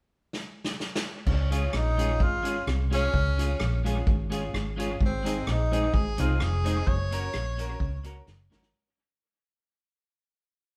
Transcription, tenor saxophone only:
0, 0, Header, 1, 2, 480
1, 0, Start_track
1, 0, Key_signature, -5, "major"
1, 0, Tempo, 466563
1, 1303, Time_signature, 4, 2, 24, 8
1, 11077, End_track
2, 0, Start_track
2, 0, Title_t, "Tenor saxophone"
2, 0, Program_c, 0, 66
2, 1317, Note_on_c, 0, 61, 78
2, 1815, Note_on_c, 0, 63, 90
2, 1830, Note_off_c, 0, 61, 0
2, 2291, Note_on_c, 0, 65, 98
2, 2306, Note_off_c, 0, 63, 0
2, 2757, Note_off_c, 0, 65, 0
2, 3024, Note_on_c, 0, 61, 112
2, 3931, Note_off_c, 0, 61, 0
2, 5200, Note_on_c, 0, 60, 83
2, 5668, Note_on_c, 0, 63, 88
2, 5683, Note_off_c, 0, 60, 0
2, 6110, Note_on_c, 0, 68, 93
2, 6126, Note_off_c, 0, 63, 0
2, 6379, Note_on_c, 0, 65, 84
2, 6394, Note_off_c, 0, 68, 0
2, 6608, Note_on_c, 0, 68, 97
2, 6623, Note_off_c, 0, 65, 0
2, 7072, Note_on_c, 0, 73, 106
2, 7088, Note_off_c, 0, 68, 0
2, 8507, Note_off_c, 0, 73, 0
2, 11077, End_track
0, 0, End_of_file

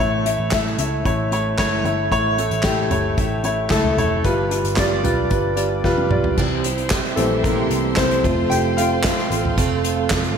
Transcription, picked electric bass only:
0, 0, Header, 1, 2, 480
1, 0, Start_track
1, 0, Tempo, 532387
1, 1911, Time_signature, 4, 2, 24, 8
1, 9357, End_track
2, 0, Start_track
2, 0, Title_t, "Picked electric bass"
2, 0, Program_c, 0, 34
2, 0, Note_on_c, 0, 33, 94
2, 328, Note_off_c, 0, 33, 0
2, 349, Note_on_c, 0, 33, 73
2, 685, Note_off_c, 0, 33, 0
2, 706, Note_on_c, 0, 37, 74
2, 932, Note_off_c, 0, 37, 0
2, 949, Note_on_c, 0, 33, 95
2, 1396, Note_off_c, 0, 33, 0
2, 1428, Note_on_c, 0, 31, 74
2, 1653, Note_off_c, 0, 31, 0
2, 1664, Note_on_c, 0, 31, 78
2, 1890, Note_off_c, 0, 31, 0
2, 1908, Note_on_c, 0, 33, 90
2, 2244, Note_off_c, 0, 33, 0
2, 2266, Note_on_c, 0, 33, 79
2, 2603, Note_off_c, 0, 33, 0
2, 2627, Note_on_c, 0, 31, 76
2, 2852, Note_off_c, 0, 31, 0
2, 2865, Note_on_c, 0, 33, 76
2, 3314, Note_off_c, 0, 33, 0
2, 3343, Note_on_c, 0, 37, 68
2, 3570, Note_off_c, 0, 37, 0
2, 3580, Note_on_c, 0, 29, 83
2, 3809, Note_off_c, 0, 29, 0
2, 3829, Note_on_c, 0, 31, 88
2, 4165, Note_off_c, 0, 31, 0
2, 4182, Note_on_c, 0, 31, 79
2, 4521, Note_off_c, 0, 31, 0
2, 4546, Note_on_c, 0, 35, 74
2, 4772, Note_off_c, 0, 35, 0
2, 4787, Note_on_c, 0, 31, 85
2, 5236, Note_off_c, 0, 31, 0
2, 5264, Note_on_c, 0, 29, 69
2, 5491, Note_off_c, 0, 29, 0
2, 5506, Note_on_c, 0, 35, 83
2, 5732, Note_off_c, 0, 35, 0
2, 5747, Note_on_c, 0, 36, 85
2, 6320, Note_off_c, 0, 36, 0
2, 6467, Note_on_c, 0, 34, 78
2, 6916, Note_off_c, 0, 34, 0
2, 6946, Note_on_c, 0, 36, 70
2, 7173, Note_off_c, 0, 36, 0
2, 7185, Note_on_c, 0, 36, 63
2, 7412, Note_off_c, 0, 36, 0
2, 7431, Note_on_c, 0, 29, 93
2, 7655, Note_off_c, 0, 29, 0
2, 7664, Note_on_c, 0, 29, 87
2, 8239, Note_off_c, 0, 29, 0
2, 8388, Note_on_c, 0, 33, 71
2, 8614, Note_off_c, 0, 33, 0
2, 8632, Note_on_c, 0, 29, 90
2, 9080, Note_off_c, 0, 29, 0
2, 9110, Note_on_c, 0, 29, 72
2, 9343, Note_off_c, 0, 29, 0
2, 9357, End_track
0, 0, End_of_file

